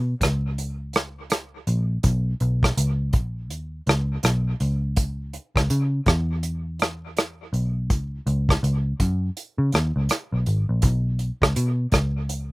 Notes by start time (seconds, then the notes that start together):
Already playing: B2
0.21 C#2, kick, cross-stick, closed hi-hat
0.58 closed hi-hat
0.93 cross-stick, closed hi-hat
1.30 cross-stick, closed hi-hat
1.67 A#1, closed hi-hat
2.03 B1, kick, closed hi-hat
2.40 B1, closed hi-hat
2.63 kick, cross-stick
2.77 C#2, closed hi-hat
3.13 A#1, kick, closed hi-hat
3.50 D#2, closed hi-hat
3.87 C#2, cross-stick, closed hi-hat
4.23 B1, cross-stick, closed hi-hat
4.60 C#2, closed hi-hat
4.96 kick, closed hi-hat
5.33 closed hi-hat
5.56 C#2, kick, cross-stick
5.70 C#3, closed hi-hat
6.06 E2, kick, cross-stick, closed hi-hat
6.43 closed hi-hat
6.79 cross-stick, closed hi-hat
7.17 cross-stick, closed hi-hat
7.53 B1, closed hi-hat
7.90 C#2, kick, closed hi-hat
8.27 C#2, closed hi-hat
8.49 kick, cross-stick
8.63 C#2, closed hi-hat
9.00 F#2, kick, closed hi-hat
9.37 closed hi-hat
9.58 C#3
9.72 D#2, cross-stick, closed hi-hat
9.96 C#2
10.09 cross-stick, closed hi-hat
10.32 B1
10.46 G#1, closed hi-hat
10.69 A#1
10.82 B1, kick, closed hi-hat
11.19 closed hi-hat
11.42 C#2, kick, cross-stick
11.56 B2, closed hi-hat
11.92 C#2, kick, cross-stick, closed hi-hat
12.29 closed hi-hat